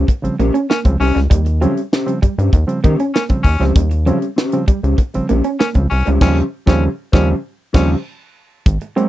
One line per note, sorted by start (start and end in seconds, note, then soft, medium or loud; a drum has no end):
0.08 muted clean electric guitar stroke medium
0.08 kick medium
0.08 closed hi-hat medium
0.23 0.30 A#1 medium
0.23 0.34 C#3 medium
0.23 0.35 F3 medium
0.23 0.35 G3 medium
0.23 0.35 C4 medium
0.23 muted clean electric guitar stroke medium
0.23 closed hi-hat medium
0.39 0.51 A#1 medium
0.39 0.51 A#3 medium
0.39 0.56 C#4 medium
0.39 0.55 G4 loud
0.39 0.54 C5 medium
0.39 closed hi-hat medium
0.54 0.66 C#4 medium
0.54 muted clean electric guitar stroke medium
0.54 closed hi-hat medium
0.70 0.82 A#3 medium
0.70 0.80 C#4 loud
0.70 snare loud
0.85 0.97 C#2 loud
0.85 0.96 C#3 medium
0.85 0.96 F3 medium
0.85 0.96 G3 medium
0.85 0.96 C4 medium
0.85 muted clean electric guitar stroke soft
0.85 kick medium
0.85 closed hi-hat soft
1.00 1.12 C2 loud
1.00 1.17 C#4 medium
1.00 1.20 C#4 loud
1.00 1.15 G4 medium
1.00 1.14 C5 medium
1.00 muted clean electric guitar stroke soft
1.00 open hi-hat medium
1.15 1.28 C#2 medium
1.15 1.27 G3 medium
1.15 muted clean electric guitar stroke soft
1.15 snare soft
1.15 closed hi-hat medium
1.30 1.67 D#2 loud
1.30 1.42 G3 medium
1.30 kick loud
1.30 closed hi-hat loud
1.46 muted clean electric guitar stroke soft
1.46 closed hi-hat medium
1.61 1.73 C#3 medium
1.61 1.73 F3 medium
1.61 1.73 F#3 medium
1.61 1.73 G3 medium
1.61 1.73 C4 loud
1.61 1.79 C#4 medium
1.61 1.79 G4 medium
1.61 1.79 C#5 medium
1.61 closed hi-hat medium
1.77 1.83 G3 soft
1.77 1.83 C4 soft
1.77 closed hi-hat soft
1.93 2.10 C#4 medium
1.93 2.10 G4 medium
1.93 2.10 C5 loud
1.93 snare loud
2.06 2.18 C#3 medium
2.06 2.18 F3 medium
2.06 2.18 G3 medium
2.06 2.18 C4 medium
2.06 closed hi-hat medium
2.22 2.29 G2 soft
2.22 2.34 G3 medium
2.22 muted clean electric guitar stroke soft
2.22 kick medium
2.22 closed hi-hat medium
2.38 2.50 G2 medium
2.38 2.52 C#4 medium
2.38 2.52 G4 medium
2.38 2.52 C5 medium
2.38 closed hi-hat medium
2.53 2.65 D#2 loud
2.53 muted clean electric guitar stroke medium
2.53 kick medium
2.53 closed hi-hat medium
2.67 2.79 C#3 medium
2.67 2.79 F3 medium
2.67 2.80 G3 medium
2.67 2.80 C4 medium
2.67 muted clean electric guitar stroke soft
2.67 closed hi-hat soft
2.83 2.96 D#3 medium
2.83 2.90 G3 soft
2.83 2.96 A#3 medium
2.83 2.90 C4 soft
2.83 3.02 C#4 medium
2.83 3.00 G4 loud
2.83 2.98 C5 loud
2.83 kick loud
2.83 closed hi-hat medium
2.99 3.12 C#4 medium
2.99 muted clean electric guitar stroke soft
2.99 closed hi-hat medium
3.14 3.27 A#3 medium
3.14 3.24 C#4 medium
3.14 muted clean electric guitar stroke soft
3.14 snare loud
3.29 3.41 C#3 medium
3.29 3.41 F3 medium
3.29 3.41 G3 medium
3.29 3.41 C4 medium
3.29 muted clean electric guitar stroke soft
3.29 kick medium
3.29 closed hi-hat soft
3.43 3.57 D#2 medium
3.43 3.64 C#4 loud
3.43 kick medium
3.43 open hi-hat medium
3.60 3.72 C#2 medium
3.60 3.72 C#3 medium
3.60 3.72 F3 medium
3.60 3.72 G3 medium
3.60 3.73 G3 medium
3.60 3.72 C4 medium
3.60 3.79 C#4 medium
3.60 3.78 G4 medium
3.60 3.78 C5 medium
3.60 snare soft
3.60 closed hi-hat soft
3.75 4.12 D#2 loud
3.75 3.88 G3 medium
3.75 kick loud
3.75 closed hi-hat loud
3.91 muted clean electric guitar stroke soft
3.91 closed hi-hat medium
4.06 4.18 C#3 medium
4.06 4.18 F3 medium
4.06 4.18 F#3 medium
4.06 4.18 G3 medium
4.06 4.18 C4 loud
4.06 4.24 C#4 medium
4.06 4.24 G4 medium
4.06 4.25 C#5 medium
4.06 closed hi-hat medium
4.22 4.28 G3 soft
4.22 4.28 C4 soft
4.22 closed hi-hat soft
4.36 4.57 C#4 medium
4.36 4.57 G4 medium
4.36 4.57 C5 medium
4.36 snare loud
4.52 4.64 C#3 medium
4.52 4.64 F3 medium
4.52 4.64 G3 medium
4.52 4.64 C4 medium
4.52 closed hi-hat medium
4.68 4.74 C#2 medium
4.68 4.80 G3 medium
4.68 muted clean electric guitar stroke medium
4.68 kick medium
4.68 closed hi-hat medium
4.83 4.95 C#2 medium
4.83 4.98 C#4 medium
4.83 4.97 G4 medium
4.83 4.97 C5 medium
4.83 closed hi-hat medium
4.98 muted clean electric guitar stroke medium
4.98 kick medium
4.98 closed hi-hat medium
5.14 5.21 A#1 soft
5.14 5.26 C#3 medium
5.14 5.26 F3 medium
5.14 5.26 G3 medium
5.14 5.26 C4 medium
5.14 muted clean electric guitar stroke soft
5.14 closed hi-hat medium
5.29 5.42 A#1 loud
5.29 5.36 G3 soft
5.29 5.41 A#3 medium
5.29 5.47 C#4 medium
5.29 5.44 G4 medium
5.29 5.43 C5 medium
5.29 closed hi-hat medium
5.44 5.56 C#4 medium
5.44 muted clean electric guitar stroke soft
5.44 closed hi-hat medium
5.59 5.72 A#3 medium
5.59 5.69 C#4 loud
5.59 muted clean electric guitar stroke soft
5.59 snare loud
5.74 5.87 C#2 medium
5.74 5.86 C#3 medium
5.74 5.86 F3 medium
5.74 5.87 G3 medium
5.74 5.87 C4 medium
5.74 muted clean electric guitar stroke soft
5.74 kick medium
5.74 closed hi-hat soft
5.90 6.03 C2 medium
5.90 5.97 G3 soft
5.90 5.97 C4 soft
5.90 6.10 C#4 loud
5.90 muted clean electric guitar stroke soft
5.90 open hi-hat medium
6.05 6.19 C#2 loud
6.05 6.18 G3 medium
6.05 6.22 C#4 medium
6.05 6.21 G4 medium
6.05 6.20 C5 medium
6.05 closed hi-hat soft
6.21 6.42 D#2 loud
6.21 6.42 C#3 medium
6.21 6.42 F3 loud
6.21 6.42 G3 loud
6.21 6.43 C4 medium
6.21 6.37 C#4 loud
6.21 6.43 C#4 loud
6.21 6.42 G4 loud
6.21 6.42 C5 loud
6.21 kick loud
6.21 snare loud
6.21 crash medium
6.66 6.88 D#2 loud
6.66 6.88 C#3 loud
6.66 6.88 F3 loud
6.66 6.88 G3 loud
6.66 6.88 C4 loud
6.66 6.87 C#4 medium
6.66 6.84 C#4 loud
6.66 6.88 G4 medium
6.66 6.88 C#5 medium
6.66 kick loud
6.66 snare loud
7.12 7.34 D#2 loud
7.12 7.34 C#3 medium
7.12 7.34 F3 loud
7.12 7.35 G3 loud
7.12 7.35 C4 loud
7.12 7.29 C#4 medium
7.12 7.34 C#4 loud
7.12 7.34 G4 loud
7.12 7.34 C5 loud
7.12 kick loud
7.12 snare loud
7.73 7.95 D#2 loud
7.73 7.95 C#3 medium
7.73 7.95 F3 loud
7.73 7.95 G3 loud
7.73 7.95 C4 loud
7.73 7.95 C#4 loud
7.73 7.91 C#4 loud
7.73 7.95 G4 loud
7.73 7.95 C5 loud
7.73 kick loud
7.73 snare loud
7.73 crash medium
8.66 8.78 G#1 medium
8.66 8.78 G#2 medium
8.66 8.78 D#3 medium
8.66 kick loud
8.66 closed hi-hat medium
8.81 muted clean electric guitar stroke soft
8.81 closed hi-hat soft
8.96 9.08 F#3 medium
8.96 9.09 G#3 medium
8.96 9.08 A#3 medium
8.96 9.08 C4 loud
8.96 9.09 C4 medium
8.96 9.09 F#4 medium
8.96 9.09 C5 medium
8.96 closed hi-hat medium